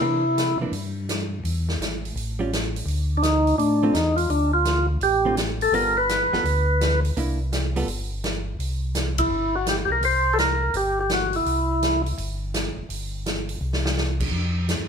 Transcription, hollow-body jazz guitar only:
0, 0, Header, 1, 2, 480
1, 0, Start_track
1, 0, Tempo, 357356
1, 27, Time_signature, 4, 2, 24, 8
1, 19992, End_track
2, 0, Start_track
2, 0, Title_t, "Hollow-body jazz guitar"
2, 0, Program_c, 0, 26
2, 18, Note_on_c, 0, 52, 49
2, 25, Note_on_c, 0, 58, 58
2, 36, Note_on_c, 0, 62, 59
2, 303, Note_off_c, 0, 52, 0
2, 307, Note_off_c, 0, 58, 0
2, 312, Note_off_c, 0, 62, 0
2, 822, Note_on_c, 0, 52, 46
2, 832, Note_on_c, 0, 58, 50
2, 845, Note_on_c, 0, 62, 56
2, 969, Note_off_c, 0, 52, 0
2, 974, Note_off_c, 0, 58, 0
2, 981, Note_off_c, 0, 62, 0
2, 3212, Note_on_c, 0, 55, 55
2, 3227, Note_on_c, 0, 65, 61
2, 3231, Note_on_c, 0, 61, 57
2, 3361, Note_off_c, 0, 55, 0
2, 3369, Note_off_c, 0, 65, 0
2, 3370, Note_off_c, 0, 61, 0
2, 5140, Note_on_c, 0, 50, 58
2, 5148, Note_on_c, 0, 60, 70
2, 5149, Note_on_c, 0, 57, 67
2, 5154, Note_on_c, 0, 65, 62
2, 5284, Note_off_c, 0, 50, 0
2, 5288, Note_off_c, 0, 57, 0
2, 5288, Note_off_c, 0, 60, 0
2, 5291, Note_off_c, 0, 65, 0
2, 7053, Note_on_c, 0, 50, 60
2, 7062, Note_on_c, 0, 57, 58
2, 7063, Note_on_c, 0, 60, 60
2, 7075, Note_on_c, 0, 65, 64
2, 7201, Note_off_c, 0, 50, 0
2, 7205, Note_off_c, 0, 57, 0
2, 7206, Note_off_c, 0, 60, 0
2, 7212, Note_off_c, 0, 65, 0
2, 7698, Note_on_c, 0, 55, 67
2, 7708, Note_on_c, 0, 59, 62
2, 7711, Note_on_c, 0, 65, 67
2, 7711, Note_on_c, 0, 69, 64
2, 7979, Note_off_c, 0, 55, 0
2, 7984, Note_off_c, 0, 59, 0
2, 7985, Note_off_c, 0, 65, 0
2, 7985, Note_off_c, 0, 69, 0
2, 8503, Note_on_c, 0, 55, 52
2, 8508, Note_on_c, 0, 59, 57
2, 8512, Note_on_c, 0, 65, 56
2, 8520, Note_on_c, 0, 69, 58
2, 8646, Note_off_c, 0, 55, 0
2, 8649, Note_off_c, 0, 59, 0
2, 8651, Note_off_c, 0, 65, 0
2, 8655, Note_off_c, 0, 69, 0
2, 9628, Note_on_c, 0, 58, 56
2, 9640, Note_on_c, 0, 62, 49
2, 9645, Note_on_c, 0, 64, 62
2, 9906, Note_off_c, 0, 58, 0
2, 9911, Note_off_c, 0, 62, 0
2, 9914, Note_off_c, 0, 64, 0
2, 10425, Note_on_c, 0, 55, 59
2, 10432, Note_on_c, 0, 59, 55
2, 10437, Note_on_c, 0, 65, 61
2, 10441, Note_on_c, 0, 69, 55
2, 10569, Note_off_c, 0, 55, 0
2, 10572, Note_off_c, 0, 59, 0
2, 10575, Note_off_c, 0, 65, 0
2, 10577, Note_off_c, 0, 69, 0
2, 19992, End_track
0, 0, End_of_file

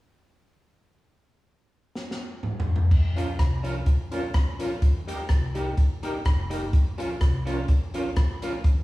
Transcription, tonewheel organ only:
0, 0, Header, 1, 2, 480
1, 0, Start_track
1, 0, Tempo, 478469
1, 993, Time_signature, 4, 2, 24, 8
1, 8863, End_track
2, 0, Start_track
2, 0, Title_t, "Tonewheel organ"
2, 0, Program_c, 0, 16
2, 3167, Note_on_c, 0, 61, 83
2, 3172, Note_on_c, 0, 65, 83
2, 3179, Note_on_c, 0, 70, 91
2, 3277, Note_off_c, 0, 61, 0
2, 3279, Note_off_c, 0, 65, 0
2, 3283, Note_off_c, 0, 70, 0
2, 3642, Note_on_c, 0, 61, 85
2, 3648, Note_on_c, 0, 65, 82
2, 3653, Note_on_c, 0, 70, 90
2, 3755, Note_off_c, 0, 61, 0
2, 3758, Note_off_c, 0, 65, 0
2, 3760, Note_off_c, 0, 70, 0
2, 4125, Note_on_c, 0, 61, 87
2, 4129, Note_on_c, 0, 65, 83
2, 4135, Note_on_c, 0, 70, 99
2, 4236, Note_off_c, 0, 61, 0
2, 4238, Note_off_c, 0, 65, 0
2, 4241, Note_off_c, 0, 70, 0
2, 4603, Note_on_c, 0, 61, 89
2, 4613, Note_on_c, 0, 65, 80
2, 4620, Note_on_c, 0, 70, 101
2, 4715, Note_off_c, 0, 61, 0
2, 4720, Note_off_c, 0, 65, 0
2, 4723, Note_off_c, 0, 70, 0
2, 5089, Note_on_c, 0, 63, 82
2, 5091, Note_on_c, 0, 67, 77
2, 5097, Note_on_c, 0, 70, 92
2, 5198, Note_off_c, 0, 63, 0
2, 5199, Note_off_c, 0, 67, 0
2, 5202, Note_off_c, 0, 70, 0
2, 5564, Note_on_c, 0, 63, 82
2, 5568, Note_on_c, 0, 67, 81
2, 5577, Note_on_c, 0, 70, 97
2, 5675, Note_off_c, 0, 63, 0
2, 5677, Note_off_c, 0, 67, 0
2, 5682, Note_off_c, 0, 70, 0
2, 6046, Note_on_c, 0, 63, 91
2, 6054, Note_on_c, 0, 67, 78
2, 6061, Note_on_c, 0, 70, 101
2, 6156, Note_off_c, 0, 63, 0
2, 6160, Note_off_c, 0, 67, 0
2, 6163, Note_off_c, 0, 70, 0
2, 6515, Note_on_c, 0, 63, 91
2, 6523, Note_on_c, 0, 67, 81
2, 6527, Note_on_c, 0, 70, 107
2, 6630, Note_off_c, 0, 63, 0
2, 6634, Note_off_c, 0, 67, 0
2, 6636, Note_off_c, 0, 70, 0
2, 7002, Note_on_c, 0, 61, 90
2, 7007, Note_on_c, 0, 65, 77
2, 7012, Note_on_c, 0, 70, 95
2, 7113, Note_off_c, 0, 61, 0
2, 7116, Note_off_c, 0, 65, 0
2, 7118, Note_off_c, 0, 70, 0
2, 7484, Note_on_c, 0, 61, 94
2, 7493, Note_on_c, 0, 65, 83
2, 7497, Note_on_c, 0, 70, 93
2, 7594, Note_off_c, 0, 61, 0
2, 7598, Note_off_c, 0, 65, 0
2, 7600, Note_off_c, 0, 70, 0
2, 7966, Note_on_c, 0, 61, 93
2, 7971, Note_on_c, 0, 65, 84
2, 7980, Note_on_c, 0, 70, 96
2, 8074, Note_off_c, 0, 61, 0
2, 8076, Note_off_c, 0, 65, 0
2, 8081, Note_off_c, 0, 70, 0
2, 8449, Note_on_c, 0, 61, 89
2, 8456, Note_on_c, 0, 65, 86
2, 8461, Note_on_c, 0, 70, 100
2, 8555, Note_off_c, 0, 61, 0
2, 8558, Note_off_c, 0, 65, 0
2, 8561, Note_off_c, 0, 70, 0
2, 8863, End_track
0, 0, End_of_file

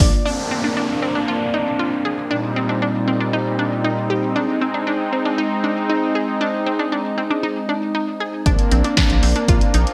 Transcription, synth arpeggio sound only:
0, 0, Header, 1, 2, 480
1, 0, Start_track
1, 0, Tempo, 512821
1, 239, Time_signature, 4, 2, 24, 8
1, 9301, End_track
2, 0, Start_track
2, 0, Title_t, "Synth arpeggio sound"
2, 0, Program_c, 0, 84
2, 238, Note_on_c, 0, 62, 95
2, 451, Note_off_c, 0, 62, 0
2, 479, Note_on_c, 0, 60, 83
2, 585, Note_off_c, 0, 60, 0
2, 599, Note_on_c, 0, 62, 75
2, 705, Note_off_c, 0, 62, 0
2, 718, Note_on_c, 0, 62, 83
2, 931, Note_off_c, 0, 62, 0
2, 959, Note_on_c, 0, 60, 79
2, 1065, Note_off_c, 0, 60, 0
2, 1079, Note_on_c, 0, 62, 76
2, 1185, Note_off_c, 0, 62, 0
2, 1200, Note_on_c, 0, 65, 90
2, 1412, Note_off_c, 0, 65, 0
2, 1440, Note_on_c, 0, 63, 84
2, 1652, Note_off_c, 0, 63, 0
2, 1679, Note_on_c, 0, 65, 82
2, 1891, Note_off_c, 0, 65, 0
2, 1919, Note_on_c, 0, 68, 81
2, 2131, Note_off_c, 0, 68, 0
2, 2159, Note_on_c, 0, 62, 94
2, 2372, Note_off_c, 0, 62, 0
2, 2399, Note_on_c, 0, 60, 82
2, 2505, Note_off_c, 0, 60, 0
2, 2519, Note_on_c, 0, 62, 74
2, 2625, Note_off_c, 0, 62, 0
2, 2640, Note_on_c, 0, 62, 83
2, 2852, Note_off_c, 0, 62, 0
2, 2880, Note_on_c, 0, 60, 82
2, 2986, Note_off_c, 0, 60, 0
2, 3000, Note_on_c, 0, 62, 74
2, 3106, Note_off_c, 0, 62, 0
2, 3120, Note_on_c, 0, 63, 85
2, 3332, Note_off_c, 0, 63, 0
2, 3360, Note_on_c, 0, 62, 81
2, 3572, Note_off_c, 0, 62, 0
2, 3598, Note_on_c, 0, 63, 84
2, 3811, Note_off_c, 0, 63, 0
2, 3838, Note_on_c, 0, 67, 80
2, 4051, Note_off_c, 0, 67, 0
2, 4078, Note_on_c, 0, 62, 92
2, 4291, Note_off_c, 0, 62, 0
2, 4319, Note_on_c, 0, 60, 81
2, 4425, Note_off_c, 0, 60, 0
2, 4438, Note_on_c, 0, 62, 76
2, 4545, Note_off_c, 0, 62, 0
2, 4558, Note_on_c, 0, 62, 86
2, 4771, Note_off_c, 0, 62, 0
2, 4798, Note_on_c, 0, 60, 78
2, 4905, Note_off_c, 0, 60, 0
2, 4918, Note_on_c, 0, 62, 79
2, 5025, Note_off_c, 0, 62, 0
2, 5038, Note_on_c, 0, 63, 88
2, 5251, Note_off_c, 0, 63, 0
2, 5278, Note_on_c, 0, 62, 80
2, 5491, Note_off_c, 0, 62, 0
2, 5518, Note_on_c, 0, 63, 82
2, 5731, Note_off_c, 0, 63, 0
2, 5758, Note_on_c, 0, 68, 81
2, 5971, Note_off_c, 0, 68, 0
2, 5998, Note_on_c, 0, 62, 95
2, 6211, Note_off_c, 0, 62, 0
2, 6238, Note_on_c, 0, 60, 84
2, 6345, Note_off_c, 0, 60, 0
2, 6358, Note_on_c, 0, 62, 78
2, 6465, Note_off_c, 0, 62, 0
2, 6479, Note_on_c, 0, 62, 83
2, 6691, Note_off_c, 0, 62, 0
2, 6718, Note_on_c, 0, 60, 79
2, 6825, Note_off_c, 0, 60, 0
2, 6838, Note_on_c, 0, 62, 76
2, 6944, Note_off_c, 0, 62, 0
2, 6957, Note_on_c, 0, 63, 90
2, 7171, Note_off_c, 0, 63, 0
2, 7197, Note_on_c, 0, 62, 81
2, 7411, Note_off_c, 0, 62, 0
2, 7438, Note_on_c, 0, 63, 82
2, 7651, Note_off_c, 0, 63, 0
2, 7679, Note_on_c, 0, 68, 80
2, 7891, Note_off_c, 0, 68, 0
2, 7918, Note_on_c, 0, 62, 95
2, 8131, Note_off_c, 0, 62, 0
2, 8159, Note_on_c, 0, 60, 79
2, 8265, Note_off_c, 0, 60, 0
2, 8278, Note_on_c, 0, 62, 78
2, 8385, Note_off_c, 0, 62, 0
2, 8399, Note_on_c, 0, 62, 87
2, 8611, Note_off_c, 0, 62, 0
2, 8639, Note_on_c, 0, 60, 76
2, 8746, Note_off_c, 0, 60, 0
2, 8759, Note_on_c, 0, 62, 76
2, 8866, Note_off_c, 0, 62, 0
2, 8880, Note_on_c, 0, 65, 89
2, 9092, Note_off_c, 0, 65, 0
2, 9119, Note_on_c, 0, 63, 81
2, 9301, Note_off_c, 0, 63, 0
2, 9301, End_track
0, 0, End_of_file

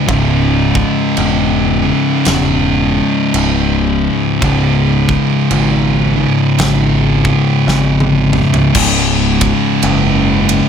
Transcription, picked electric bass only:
0, 0, Header, 1, 2, 480
1, 0, Start_track
1, 0, Key_signature, 4, "minor"
1, 0, Tempo, 1083032
1, 39, Time_signature, 4, 2, 24, 8
1, 4737, End_track
2, 0, Start_track
2, 0, Title_t, "Picked electric bass"
2, 0, Program_c, 0, 34
2, 38, Note_on_c, 0, 25, 95
2, 363, Note_off_c, 0, 25, 0
2, 521, Note_on_c, 0, 28, 98
2, 845, Note_off_c, 0, 28, 0
2, 1004, Note_on_c, 0, 28, 96
2, 1328, Note_off_c, 0, 28, 0
2, 1481, Note_on_c, 0, 25, 90
2, 1805, Note_off_c, 0, 25, 0
2, 1959, Note_on_c, 0, 25, 87
2, 2284, Note_off_c, 0, 25, 0
2, 2442, Note_on_c, 0, 32, 93
2, 2766, Note_off_c, 0, 32, 0
2, 2921, Note_on_c, 0, 32, 93
2, 3245, Note_off_c, 0, 32, 0
2, 3400, Note_on_c, 0, 32, 81
2, 3724, Note_off_c, 0, 32, 0
2, 3880, Note_on_c, 0, 25, 99
2, 4216, Note_off_c, 0, 25, 0
2, 4358, Note_on_c, 0, 30, 106
2, 4695, Note_off_c, 0, 30, 0
2, 4737, End_track
0, 0, End_of_file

